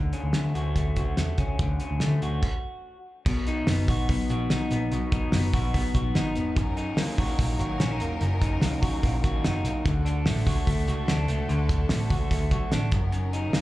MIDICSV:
0, 0, Header, 1, 5, 480
1, 0, Start_track
1, 0, Tempo, 416089
1, 1839, Time_signature, 4, 2, 24, 8
1, 5671, Tempo, 410678
1, 15833, End_track
2, 0, Start_track
2, 0, Title_t, "String section"
2, 0, Program_c, 0, 48
2, 3769, Note_on_c, 0, 54, 84
2, 3771, Note_on_c, 0, 59, 83
2, 3774, Note_on_c, 0, 63, 91
2, 7564, Note_off_c, 0, 59, 0
2, 7603, Note_on_c, 0, 61, 81
2, 7611, Note_on_c, 0, 70, 106
2, 11395, Note_off_c, 0, 54, 0
2, 11398, Note_off_c, 0, 63, 0
2, 11402, Note_off_c, 0, 61, 0
2, 11406, Note_off_c, 0, 70, 0
2, 11437, Note_on_c, 0, 62, 78
2, 11440, Note_on_c, 0, 66, 77
2, 11442, Note_on_c, 0, 69, 97
2, 11443, Note_on_c, 0, 50, 91
2, 14996, Note_off_c, 0, 62, 0
2, 14998, Note_off_c, 0, 66, 0
2, 14999, Note_off_c, 0, 50, 0
2, 14999, Note_off_c, 0, 69, 0
2, 15043, Note_on_c, 0, 54, 84
2, 15043, Note_on_c, 0, 61, 77
2, 15045, Note_on_c, 0, 70, 85
2, 15049, Note_on_c, 0, 63, 85
2, 15833, Note_off_c, 0, 54, 0
2, 15833, Note_off_c, 0, 61, 0
2, 15833, Note_off_c, 0, 63, 0
2, 15833, Note_off_c, 0, 70, 0
2, 15833, End_track
3, 0, Start_track
3, 0, Title_t, "Clean electric guitar"
3, 0, Program_c, 1, 27
3, 0, Note_on_c, 1, 50, 82
3, 0, Note_on_c, 1, 66, 56
3, 154, Note_on_c, 1, 61, 57
3, 394, Note_on_c, 1, 57, 58
3, 631, Note_off_c, 1, 66, 0
3, 636, Note_on_c, 1, 66, 61
3, 866, Note_off_c, 1, 57, 0
3, 880, Note_on_c, 1, 57, 54
3, 1114, Note_off_c, 1, 66, 0
3, 1119, Note_on_c, 1, 66, 56
3, 1352, Note_off_c, 1, 57, 0
3, 1366, Note_on_c, 1, 57, 62
3, 1587, Note_off_c, 1, 61, 0
3, 1601, Note_on_c, 1, 61, 57
3, 1832, Note_off_c, 1, 50, 0
3, 1846, Note_on_c, 1, 50, 72
3, 2069, Note_off_c, 1, 61, 0
3, 2083, Note_on_c, 1, 61, 59
3, 2318, Note_off_c, 1, 57, 0
3, 2332, Note_on_c, 1, 57, 59
3, 2563, Note_off_c, 1, 66, 0
3, 2568, Note_on_c, 1, 66, 65
3, 2850, Note_off_c, 1, 61, 0
3, 2852, Note_off_c, 1, 50, 0
3, 2854, Note_off_c, 1, 57, 0
3, 3429, Note_off_c, 1, 66, 0
3, 3765, Note_on_c, 1, 47, 87
3, 4008, Note_on_c, 1, 63, 64
3, 4240, Note_on_c, 1, 59, 64
3, 4481, Note_on_c, 1, 66, 63
3, 4707, Note_off_c, 1, 59, 0
3, 4721, Note_on_c, 1, 59, 66
3, 4958, Note_off_c, 1, 66, 0
3, 4962, Note_on_c, 1, 66, 67
3, 5192, Note_off_c, 1, 63, 0
3, 5196, Note_on_c, 1, 63, 62
3, 5426, Note_off_c, 1, 59, 0
3, 5440, Note_on_c, 1, 59, 61
3, 5668, Note_off_c, 1, 47, 0
3, 5682, Note_on_c, 1, 47, 86
3, 5916, Note_off_c, 1, 63, 0
3, 5921, Note_on_c, 1, 63, 64
3, 6145, Note_off_c, 1, 59, 0
3, 6159, Note_on_c, 1, 59, 67
3, 6395, Note_off_c, 1, 66, 0
3, 6400, Note_on_c, 1, 66, 69
3, 6622, Note_off_c, 1, 59, 0
3, 6636, Note_on_c, 1, 59, 67
3, 6873, Note_off_c, 1, 66, 0
3, 6877, Note_on_c, 1, 66, 65
3, 7111, Note_off_c, 1, 63, 0
3, 7115, Note_on_c, 1, 63, 69
3, 7346, Note_off_c, 1, 59, 0
3, 7360, Note_on_c, 1, 59, 64
3, 7594, Note_on_c, 1, 42, 88
3, 7603, Note_off_c, 1, 47, 0
3, 7647, Note_off_c, 1, 59, 0
3, 7834, Note_off_c, 1, 63, 0
3, 7838, Note_on_c, 1, 63, 68
3, 8080, Note_on_c, 1, 58, 70
3, 8316, Note_off_c, 1, 66, 0
3, 8321, Note_on_c, 1, 66, 70
3, 8550, Note_off_c, 1, 58, 0
3, 8564, Note_on_c, 1, 58, 61
3, 8797, Note_off_c, 1, 66, 0
3, 8802, Note_on_c, 1, 66, 73
3, 9039, Note_off_c, 1, 63, 0
3, 9045, Note_on_c, 1, 61, 71
3, 9168, Note_off_c, 1, 61, 0
3, 9168, Note_on_c, 1, 63, 57
3, 9272, Note_off_c, 1, 58, 0
3, 9286, Note_on_c, 1, 58, 61
3, 9514, Note_off_c, 1, 42, 0
3, 9528, Note_on_c, 1, 42, 78
3, 9751, Note_off_c, 1, 63, 0
3, 9765, Note_on_c, 1, 63, 68
3, 9983, Note_off_c, 1, 58, 0
3, 9998, Note_on_c, 1, 58, 64
3, 10234, Note_off_c, 1, 66, 0
3, 10238, Note_on_c, 1, 66, 68
3, 10466, Note_off_c, 1, 58, 0
3, 10480, Note_on_c, 1, 58, 70
3, 10723, Note_off_c, 1, 66, 0
3, 10727, Note_on_c, 1, 66, 71
3, 10948, Note_off_c, 1, 63, 0
3, 10962, Note_on_c, 1, 63, 66
3, 11192, Note_off_c, 1, 58, 0
3, 11206, Note_on_c, 1, 58, 63
3, 11436, Note_on_c, 1, 50, 83
3, 11442, Note_off_c, 1, 42, 0
3, 11487, Note_off_c, 1, 63, 0
3, 11490, Note_off_c, 1, 58, 0
3, 11675, Note_on_c, 1, 62, 67
3, 11919, Note_on_c, 1, 57, 68
3, 12150, Note_off_c, 1, 66, 0
3, 12155, Note_on_c, 1, 66, 69
3, 12385, Note_off_c, 1, 57, 0
3, 12399, Note_on_c, 1, 57, 58
3, 12637, Note_off_c, 1, 66, 0
3, 12642, Note_on_c, 1, 66, 60
3, 12863, Note_off_c, 1, 62, 0
3, 12877, Note_on_c, 1, 62, 68
3, 13098, Note_off_c, 1, 57, 0
3, 13112, Note_on_c, 1, 57, 66
3, 13337, Note_off_c, 1, 50, 0
3, 13351, Note_on_c, 1, 50, 83
3, 13578, Note_off_c, 1, 62, 0
3, 13592, Note_on_c, 1, 62, 67
3, 13820, Note_off_c, 1, 57, 0
3, 13834, Note_on_c, 1, 57, 61
3, 14073, Note_off_c, 1, 66, 0
3, 14078, Note_on_c, 1, 66, 67
3, 14302, Note_off_c, 1, 57, 0
3, 14316, Note_on_c, 1, 57, 64
3, 14554, Note_off_c, 1, 66, 0
3, 14558, Note_on_c, 1, 66, 68
3, 14784, Note_off_c, 1, 62, 0
3, 14798, Note_on_c, 1, 62, 66
3, 15028, Note_on_c, 1, 42, 90
3, 15079, Note_off_c, 1, 50, 0
3, 15082, Note_off_c, 1, 57, 0
3, 15083, Note_off_c, 1, 62, 0
3, 15249, Note_off_c, 1, 42, 0
3, 15263, Note_on_c, 1, 42, 81
3, 15508, Note_on_c, 1, 63, 68
3, 15743, Note_on_c, 1, 58, 67
3, 15833, Note_off_c, 1, 42, 0
3, 15833, Note_off_c, 1, 58, 0
3, 15833, Note_off_c, 1, 63, 0
3, 15833, Note_off_c, 1, 66, 0
3, 15833, End_track
4, 0, Start_track
4, 0, Title_t, "Picked electric bass"
4, 0, Program_c, 2, 34
4, 0, Note_on_c, 2, 38, 96
4, 115, Note_off_c, 2, 38, 0
4, 272, Note_on_c, 2, 38, 91
4, 375, Note_off_c, 2, 38, 0
4, 396, Note_on_c, 2, 50, 99
4, 600, Note_off_c, 2, 50, 0
4, 638, Note_on_c, 2, 38, 76
4, 841, Note_off_c, 2, 38, 0
4, 874, Note_on_c, 2, 38, 77
4, 1080, Note_off_c, 2, 38, 0
4, 1365, Note_on_c, 2, 40, 84
4, 1566, Note_off_c, 2, 40, 0
4, 1596, Note_on_c, 2, 37, 86
4, 1801, Note_off_c, 2, 37, 0
4, 1840, Note_on_c, 2, 38, 97
4, 2044, Note_off_c, 2, 38, 0
4, 2203, Note_on_c, 2, 38, 80
4, 2304, Note_off_c, 2, 38, 0
4, 2326, Note_on_c, 2, 50, 85
4, 2528, Note_off_c, 2, 50, 0
4, 2569, Note_on_c, 2, 38, 66
4, 2769, Note_off_c, 2, 38, 0
4, 3760, Note_on_c, 2, 35, 105
4, 4167, Note_off_c, 2, 35, 0
4, 4243, Note_on_c, 2, 30, 96
4, 4477, Note_off_c, 2, 30, 0
4, 4477, Note_on_c, 2, 34, 88
4, 4680, Note_off_c, 2, 34, 0
4, 4716, Note_on_c, 2, 35, 89
4, 4919, Note_off_c, 2, 35, 0
4, 4961, Note_on_c, 2, 34, 98
4, 5161, Note_off_c, 2, 34, 0
4, 5198, Note_on_c, 2, 35, 96
4, 5399, Note_off_c, 2, 35, 0
4, 5434, Note_on_c, 2, 34, 91
4, 5635, Note_off_c, 2, 34, 0
4, 5672, Note_on_c, 2, 35, 110
4, 6081, Note_off_c, 2, 35, 0
4, 6151, Note_on_c, 2, 30, 100
4, 6356, Note_off_c, 2, 30, 0
4, 6398, Note_on_c, 2, 34, 86
4, 6601, Note_off_c, 2, 34, 0
4, 6636, Note_on_c, 2, 35, 85
4, 6840, Note_off_c, 2, 35, 0
4, 6876, Note_on_c, 2, 34, 86
4, 7080, Note_off_c, 2, 34, 0
4, 7124, Note_on_c, 2, 32, 91
4, 7361, Note_off_c, 2, 32, 0
4, 7361, Note_on_c, 2, 28, 98
4, 7599, Note_off_c, 2, 28, 0
4, 7599, Note_on_c, 2, 30, 119
4, 8076, Note_off_c, 2, 30, 0
4, 8076, Note_on_c, 2, 37, 97
4, 8324, Note_off_c, 2, 37, 0
4, 8324, Note_on_c, 2, 32, 92
4, 8526, Note_off_c, 2, 32, 0
4, 8561, Note_on_c, 2, 34, 94
4, 8764, Note_off_c, 2, 34, 0
4, 8799, Note_on_c, 2, 32, 95
4, 9003, Note_off_c, 2, 32, 0
4, 9039, Note_on_c, 2, 34, 86
4, 9285, Note_off_c, 2, 34, 0
4, 9285, Note_on_c, 2, 28, 93
4, 9486, Note_off_c, 2, 28, 0
4, 9523, Note_on_c, 2, 30, 109
4, 9929, Note_off_c, 2, 30, 0
4, 9995, Note_on_c, 2, 37, 94
4, 10245, Note_off_c, 2, 37, 0
4, 10245, Note_on_c, 2, 32, 78
4, 10446, Note_off_c, 2, 32, 0
4, 10487, Note_on_c, 2, 34, 91
4, 10687, Note_off_c, 2, 34, 0
4, 10726, Note_on_c, 2, 32, 90
4, 10966, Note_off_c, 2, 32, 0
4, 10966, Note_on_c, 2, 30, 86
4, 11166, Note_off_c, 2, 30, 0
4, 11196, Note_on_c, 2, 35, 99
4, 11400, Note_off_c, 2, 35, 0
4, 11446, Note_on_c, 2, 38, 120
4, 11923, Note_on_c, 2, 33, 99
4, 11940, Note_off_c, 2, 38, 0
4, 12124, Note_off_c, 2, 33, 0
4, 12158, Note_on_c, 2, 37, 79
4, 12361, Note_off_c, 2, 37, 0
4, 12400, Note_on_c, 2, 38, 90
4, 12602, Note_off_c, 2, 38, 0
4, 12642, Note_on_c, 2, 37, 97
4, 12843, Note_off_c, 2, 37, 0
4, 12883, Note_on_c, 2, 38, 91
4, 13083, Note_off_c, 2, 38, 0
4, 13115, Note_on_c, 2, 37, 97
4, 13319, Note_off_c, 2, 37, 0
4, 13358, Note_on_c, 2, 38, 106
4, 13764, Note_off_c, 2, 38, 0
4, 13839, Note_on_c, 2, 33, 94
4, 14041, Note_off_c, 2, 33, 0
4, 14072, Note_on_c, 2, 37, 88
4, 14276, Note_off_c, 2, 37, 0
4, 14311, Note_on_c, 2, 38, 97
4, 14516, Note_off_c, 2, 38, 0
4, 14550, Note_on_c, 2, 35, 89
4, 14755, Note_off_c, 2, 35, 0
4, 14793, Note_on_c, 2, 33, 89
4, 14996, Note_off_c, 2, 33, 0
4, 15029, Note_on_c, 2, 30, 101
4, 15754, Note_off_c, 2, 30, 0
4, 15754, Note_on_c, 2, 37, 114
4, 15833, Note_off_c, 2, 37, 0
4, 15833, End_track
5, 0, Start_track
5, 0, Title_t, "Drums"
5, 147, Note_on_c, 9, 42, 61
5, 262, Note_off_c, 9, 42, 0
5, 381, Note_on_c, 9, 38, 109
5, 389, Note_on_c, 9, 42, 77
5, 496, Note_off_c, 9, 38, 0
5, 504, Note_off_c, 9, 42, 0
5, 637, Note_on_c, 9, 42, 72
5, 752, Note_off_c, 9, 42, 0
5, 873, Note_on_c, 9, 36, 78
5, 874, Note_on_c, 9, 42, 91
5, 989, Note_off_c, 9, 36, 0
5, 990, Note_off_c, 9, 42, 0
5, 1110, Note_on_c, 9, 42, 67
5, 1114, Note_on_c, 9, 36, 79
5, 1225, Note_off_c, 9, 42, 0
5, 1230, Note_off_c, 9, 36, 0
5, 1352, Note_on_c, 9, 42, 78
5, 1353, Note_on_c, 9, 38, 88
5, 1467, Note_off_c, 9, 42, 0
5, 1468, Note_off_c, 9, 38, 0
5, 1589, Note_on_c, 9, 42, 71
5, 1594, Note_on_c, 9, 36, 78
5, 1704, Note_off_c, 9, 42, 0
5, 1709, Note_off_c, 9, 36, 0
5, 1836, Note_on_c, 9, 42, 70
5, 1837, Note_on_c, 9, 36, 104
5, 1952, Note_off_c, 9, 42, 0
5, 1953, Note_off_c, 9, 36, 0
5, 2073, Note_on_c, 9, 42, 67
5, 2188, Note_off_c, 9, 42, 0
5, 2308, Note_on_c, 9, 38, 102
5, 2317, Note_on_c, 9, 42, 81
5, 2424, Note_off_c, 9, 38, 0
5, 2432, Note_off_c, 9, 42, 0
5, 2561, Note_on_c, 9, 42, 75
5, 2677, Note_off_c, 9, 42, 0
5, 2797, Note_on_c, 9, 49, 69
5, 2800, Note_on_c, 9, 36, 92
5, 2912, Note_off_c, 9, 49, 0
5, 2915, Note_off_c, 9, 36, 0
5, 3760, Note_on_c, 9, 49, 92
5, 3761, Note_on_c, 9, 36, 114
5, 3875, Note_off_c, 9, 49, 0
5, 3876, Note_off_c, 9, 36, 0
5, 3997, Note_on_c, 9, 46, 66
5, 3998, Note_on_c, 9, 44, 67
5, 4113, Note_off_c, 9, 44, 0
5, 4113, Note_off_c, 9, 46, 0
5, 4233, Note_on_c, 9, 38, 122
5, 4239, Note_on_c, 9, 44, 67
5, 4241, Note_on_c, 9, 46, 87
5, 4348, Note_off_c, 9, 38, 0
5, 4354, Note_off_c, 9, 44, 0
5, 4357, Note_off_c, 9, 46, 0
5, 4479, Note_on_c, 9, 36, 93
5, 4481, Note_on_c, 9, 44, 65
5, 4486, Note_on_c, 9, 46, 80
5, 4594, Note_off_c, 9, 36, 0
5, 4596, Note_off_c, 9, 44, 0
5, 4601, Note_off_c, 9, 46, 0
5, 4718, Note_on_c, 9, 36, 85
5, 4720, Note_on_c, 9, 44, 58
5, 4722, Note_on_c, 9, 46, 102
5, 4833, Note_off_c, 9, 36, 0
5, 4835, Note_off_c, 9, 44, 0
5, 4838, Note_off_c, 9, 46, 0
5, 4953, Note_on_c, 9, 46, 80
5, 4955, Note_on_c, 9, 44, 70
5, 5068, Note_off_c, 9, 46, 0
5, 5071, Note_off_c, 9, 44, 0
5, 5192, Note_on_c, 9, 46, 85
5, 5193, Note_on_c, 9, 38, 109
5, 5193, Note_on_c, 9, 44, 58
5, 5308, Note_off_c, 9, 44, 0
5, 5308, Note_off_c, 9, 46, 0
5, 5309, Note_off_c, 9, 38, 0
5, 5429, Note_on_c, 9, 46, 86
5, 5434, Note_on_c, 9, 44, 69
5, 5544, Note_off_c, 9, 46, 0
5, 5550, Note_off_c, 9, 44, 0
5, 5671, Note_on_c, 9, 44, 64
5, 5671, Note_on_c, 9, 46, 85
5, 5787, Note_off_c, 9, 46, 0
5, 5788, Note_off_c, 9, 44, 0
5, 5909, Note_on_c, 9, 46, 72
5, 5910, Note_on_c, 9, 44, 68
5, 5912, Note_on_c, 9, 36, 101
5, 6026, Note_off_c, 9, 46, 0
5, 6027, Note_off_c, 9, 44, 0
5, 6029, Note_off_c, 9, 36, 0
5, 6145, Note_on_c, 9, 38, 125
5, 6151, Note_on_c, 9, 44, 69
5, 6154, Note_on_c, 9, 46, 96
5, 6262, Note_off_c, 9, 38, 0
5, 6268, Note_off_c, 9, 44, 0
5, 6270, Note_off_c, 9, 46, 0
5, 6391, Note_on_c, 9, 44, 62
5, 6394, Note_on_c, 9, 36, 91
5, 6396, Note_on_c, 9, 46, 81
5, 6508, Note_off_c, 9, 44, 0
5, 6511, Note_off_c, 9, 36, 0
5, 6513, Note_off_c, 9, 46, 0
5, 6636, Note_on_c, 9, 44, 59
5, 6637, Note_on_c, 9, 36, 83
5, 6639, Note_on_c, 9, 46, 109
5, 6753, Note_off_c, 9, 44, 0
5, 6754, Note_off_c, 9, 36, 0
5, 6756, Note_off_c, 9, 46, 0
5, 6872, Note_on_c, 9, 46, 84
5, 6875, Note_on_c, 9, 44, 69
5, 6877, Note_on_c, 9, 36, 89
5, 6989, Note_off_c, 9, 46, 0
5, 6992, Note_off_c, 9, 44, 0
5, 6994, Note_off_c, 9, 36, 0
5, 7115, Note_on_c, 9, 38, 106
5, 7115, Note_on_c, 9, 44, 57
5, 7115, Note_on_c, 9, 46, 86
5, 7232, Note_off_c, 9, 38, 0
5, 7232, Note_off_c, 9, 44, 0
5, 7232, Note_off_c, 9, 46, 0
5, 7352, Note_on_c, 9, 46, 87
5, 7357, Note_on_c, 9, 44, 64
5, 7469, Note_off_c, 9, 46, 0
5, 7474, Note_off_c, 9, 44, 0
5, 7597, Note_on_c, 9, 44, 66
5, 7597, Note_on_c, 9, 46, 86
5, 7599, Note_on_c, 9, 36, 107
5, 7714, Note_off_c, 9, 44, 0
5, 7714, Note_off_c, 9, 46, 0
5, 7715, Note_off_c, 9, 36, 0
5, 7837, Note_on_c, 9, 46, 67
5, 7838, Note_on_c, 9, 44, 68
5, 7954, Note_off_c, 9, 44, 0
5, 7954, Note_off_c, 9, 46, 0
5, 8071, Note_on_c, 9, 38, 127
5, 8077, Note_on_c, 9, 44, 70
5, 8080, Note_on_c, 9, 46, 83
5, 8188, Note_off_c, 9, 38, 0
5, 8194, Note_off_c, 9, 44, 0
5, 8197, Note_off_c, 9, 46, 0
5, 8321, Note_on_c, 9, 36, 97
5, 8323, Note_on_c, 9, 44, 64
5, 8328, Note_on_c, 9, 46, 79
5, 8437, Note_off_c, 9, 36, 0
5, 8440, Note_off_c, 9, 44, 0
5, 8445, Note_off_c, 9, 46, 0
5, 8556, Note_on_c, 9, 44, 63
5, 8559, Note_on_c, 9, 46, 109
5, 8561, Note_on_c, 9, 36, 96
5, 8673, Note_off_c, 9, 44, 0
5, 8676, Note_off_c, 9, 46, 0
5, 8678, Note_off_c, 9, 36, 0
5, 8799, Note_on_c, 9, 46, 89
5, 8801, Note_on_c, 9, 44, 72
5, 8916, Note_off_c, 9, 46, 0
5, 8918, Note_off_c, 9, 44, 0
5, 9041, Note_on_c, 9, 46, 89
5, 9042, Note_on_c, 9, 38, 109
5, 9042, Note_on_c, 9, 44, 59
5, 9158, Note_off_c, 9, 46, 0
5, 9159, Note_off_c, 9, 38, 0
5, 9159, Note_off_c, 9, 44, 0
5, 9276, Note_on_c, 9, 46, 82
5, 9281, Note_on_c, 9, 44, 64
5, 9393, Note_off_c, 9, 46, 0
5, 9398, Note_off_c, 9, 44, 0
5, 9519, Note_on_c, 9, 44, 66
5, 9519, Note_on_c, 9, 46, 81
5, 9635, Note_off_c, 9, 46, 0
5, 9636, Note_off_c, 9, 44, 0
5, 9761, Note_on_c, 9, 36, 92
5, 9762, Note_on_c, 9, 44, 71
5, 9762, Note_on_c, 9, 46, 71
5, 9878, Note_off_c, 9, 36, 0
5, 9878, Note_off_c, 9, 46, 0
5, 9879, Note_off_c, 9, 44, 0
5, 9995, Note_on_c, 9, 38, 114
5, 10001, Note_on_c, 9, 44, 69
5, 10003, Note_on_c, 9, 46, 94
5, 10112, Note_off_c, 9, 38, 0
5, 10118, Note_off_c, 9, 44, 0
5, 10120, Note_off_c, 9, 46, 0
5, 10242, Note_on_c, 9, 36, 99
5, 10244, Note_on_c, 9, 44, 63
5, 10249, Note_on_c, 9, 46, 78
5, 10359, Note_off_c, 9, 36, 0
5, 10361, Note_off_c, 9, 44, 0
5, 10366, Note_off_c, 9, 46, 0
5, 10484, Note_on_c, 9, 36, 85
5, 10484, Note_on_c, 9, 44, 65
5, 10487, Note_on_c, 9, 46, 107
5, 10601, Note_off_c, 9, 36, 0
5, 10601, Note_off_c, 9, 44, 0
5, 10604, Note_off_c, 9, 46, 0
5, 10722, Note_on_c, 9, 46, 78
5, 10724, Note_on_c, 9, 36, 92
5, 10724, Note_on_c, 9, 44, 66
5, 10839, Note_off_c, 9, 46, 0
5, 10841, Note_off_c, 9, 36, 0
5, 10841, Note_off_c, 9, 44, 0
5, 10964, Note_on_c, 9, 44, 63
5, 10964, Note_on_c, 9, 46, 83
5, 10965, Note_on_c, 9, 38, 113
5, 11081, Note_off_c, 9, 38, 0
5, 11081, Note_off_c, 9, 44, 0
5, 11081, Note_off_c, 9, 46, 0
5, 11202, Note_on_c, 9, 46, 86
5, 11208, Note_on_c, 9, 44, 67
5, 11319, Note_off_c, 9, 46, 0
5, 11325, Note_off_c, 9, 44, 0
5, 11444, Note_on_c, 9, 36, 118
5, 11444, Note_on_c, 9, 44, 65
5, 11444, Note_on_c, 9, 46, 85
5, 11561, Note_off_c, 9, 36, 0
5, 11561, Note_off_c, 9, 44, 0
5, 11561, Note_off_c, 9, 46, 0
5, 11683, Note_on_c, 9, 44, 69
5, 11683, Note_on_c, 9, 46, 72
5, 11799, Note_off_c, 9, 46, 0
5, 11800, Note_off_c, 9, 44, 0
5, 11914, Note_on_c, 9, 38, 121
5, 11919, Note_on_c, 9, 44, 68
5, 11922, Note_on_c, 9, 46, 86
5, 12030, Note_off_c, 9, 38, 0
5, 12036, Note_off_c, 9, 44, 0
5, 12039, Note_off_c, 9, 46, 0
5, 12156, Note_on_c, 9, 44, 63
5, 12159, Note_on_c, 9, 36, 91
5, 12161, Note_on_c, 9, 46, 90
5, 12273, Note_off_c, 9, 44, 0
5, 12276, Note_off_c, 9, 36, 0
5, 12278, Note_off_c, 9, 46, 0
5, 12397, Note_on_c, 9, 44, 60
5, 12399, Note_on_c, 9, 36, 88
5, 12400, Note_on_c, 9, 46, 97
5, 12514, Note_off_c, 9, 44, 0
5, 12516, Note_off_c, 9, 36, 0
5, 12516, Note_off_c, 9, 46, 0
5, 12637, Note_on_c, 9, 46, 86
5, 12639, Note_on_c, 9, 44, 70
5, 12754, Note_off_c, 9, 46, 0
5, 12756, Note_off_c, 9, 44, 0
5, 12878, Note_on_c, 9, 38, 115
5, 12878, Note_on_c, 9, 44, 60
5, 12878, Note_on_c, 9, 46, 82
5, 12995, Note_off_c, 9, 38, 0
5, 12995, Note_off_c, 9, 44, 0
5, 12995, Note_off_c, 9, 46, 0
5, 13113, Note_on_c, 9, 46, 84
5, 13118, Note_on_c, 9, 44, 68
5, 13230, Note_off_c, 9, 46, 0
5, 13235, Note_off_c, 9, 44, 0
5, 13358, Note_on_c, 9, 46, 78
5, 13359, Note_on_c, 9, 44, 66
5, 13475, Note_off_c, 9, 44, 0
5, 13475, Note_off_c, 9, 46, 0
5, 13593, Note_on_c, 9, 36, 91
5, 13596, Note_on_c, 9, 44, 65
5, 13596, Note_on_c, 9, 46, 79
5, 13710, Note_off_c, 9, 36, 0
5, 13713, Note_off_c, 9, 44, 0
5, 13713, Note_off_c, 9, 46, 0
5, 13826, Note_on_c, 9, 38, 121
5, 13832, Note_on_c, 9, 44, 66
5, 13834, Note_on_c, 9, 46, 94
5, 13943, Note_off_c, 9, 38, 0
5, 13949, Note_off_c, 9, 44, 0
5, 13951, Note_off_c, 9, 46, 0
5, 14072, Note_on_c, 9, 36, 103
5, 14074, Note_on_c, 9, 44, 57
5, 14079, Note_on_c, 9, 46, 83
5, 14189, Note_off_c, 9, 36, 0
5, 14191, Note_off_c, 9, 44, 0
5, 14196, Note_off_c, 9, 46, 0
5, 14312, Note_on_c, 9, 36, 88
5, 14312, Note_on_c, 9, 44, 62
5, 14315, Note_on_c, 9, 46, 106
5, 14429, Note_off_c, 9, 36, 0
5, 14429, Note_off_c, 9, 44, 0
5, 14432, Note_off_c, 9, 46, 0
5, 14548, Note_on_c, 9, 46, 84
5, 14550, Note_on_c, 9, 36, 90
5, 14550, Note_on_c, 9, 44, 66
5, 14665, Note_off_c, 9, 46, 0
5, 14667, Note_off_c, 9, 36, 0
5, 14667, Note_off_c, 9, 44, 0
5, 14788, Note_on_c, 9, 46, 86
5, 14789, Note_on_c, 9, 38, 101
5, 14789, Note_on_c, 9, 44, 67
5, 14905, Note_off_c, 9, 44, 0
5, 14905, Note_off_c, 9, 46, 0
5, 14906, Note_off_c, 9, 38, 0
5, 15021, Note_on_c, 9, 46, 83
5, 15026, Note_on_c, 9, 44, 64
5, 15028, Note_on_c, 9, 36, 106
5, 15137, Note_off_c, 9, 46, 0
5, 15143, Note_off_c, 9, 44, 0
5, 15145, Note_off_c, 9, 36, 0
5, 15265, Note_on_c, 9, 44, 64
5, 15265, Note_on_c, 9, 46, 84
5, 15382, Note_off_c, 9, 44, 0
5, 15382, Note_off_c, 9, 46, 0
5, 15507, Note_on_c, 9, 44, 72
5, 15507, Note_on_c, 9, 46, 70
5, 15624, Note_off_c, 9, 44, 0
5, 15624, Note_off_c, 9, 46, 0
5, 15743, Note_on_c, 9, 38, 123
5, 15748, Note_on_c, 9, 44, 68
5, 15751, Note_on_c, 9, 46, 85
5, 15833, Note_off_c, 9, 38, 0
5, 15833, Note_off_c, 9, 44, 0
5, 15833, Note_off_c, 9, 46, 0
5, 15833, End_track
0, 0, End_of_file